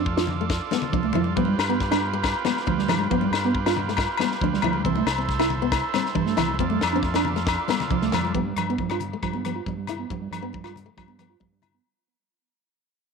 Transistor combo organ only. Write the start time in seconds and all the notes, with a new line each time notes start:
Already playing: F4 A4 D5
1.36 G4 B4
3.10 F4 G4
4.84 E4 A4 C5
6.59 F4 A4 D5